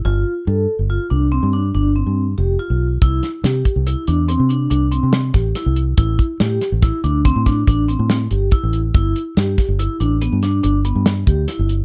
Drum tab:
HH |--------------|xxxxxxxxxxxxxx|xxxxxxxxxxxxxx|xxxxxxxxxxxxxx|
SD |--------------|-oo-------ooo-|--ooo--o--o---|--oo---o--o-o-|
BD |--------------|o--o-------o--|oo--o-ooo---o-|o--o-------o--|